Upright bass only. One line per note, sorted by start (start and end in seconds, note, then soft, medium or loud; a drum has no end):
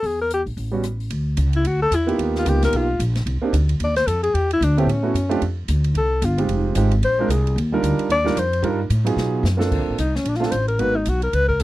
0.03 0.43 E2 medium
0.46 0.56 A#1 medium
0.57 1.08 A1 medium
1.10 1.36 D2 medium
1.37 1.64 C#2 medium
1.65 1.90 D2 medium
1.91 2.18 E2 medium
2.19 2.45 D#2 medium
2.45 2.72 C#2 medium
2.73 2.99 B1 medium
2.99 3.25 A#1 loud
3.26 3.41 C2 medium
3.42 muted upright bass stroke soft
3.53 3.79 D2 loud
3.80 4.06 D#2 medium
4.07 4.33 F2 medium
4.34 4.60 E2 medium
4.61 4.86 D2 loud
4.86 5.13 A2 medium
5.14 5.41 F#2 medium
5.41 5.68 F2 medium
5.68 5.94 D2 medium
5.94 6.21 C2 medium
6.22 6.48 G1 loud
6.48 6.75 F1 medium
6.76 7.01 G#1 medium
7.02 7.28 A#1 medium
7.28 7.55 C2 medium
7.56 7.82 D#2 medium
7.82 7.98 D2 loud
7.99 muted upright bass stroke soft
8.09 8.35 D#2 medium
8.35 8.62 F2 loud
8.62 8.89 G2 medium
8.90 9.16 A2 medium
9.16 9.42 B2 medium
9.43 9.70 F#2 medium
9.71 9.79 D2 medium
9.79 9.88 A#1 medium
9.88 9.97 A1 medium
9.98 10.24 C2 medium
10.24 10.51 A#1 medium
10.52 10.78 A1 medium
10.79 11.05 G#1 medium
11.06 11.32 B1 medium
11.33 11.59 C#2 medium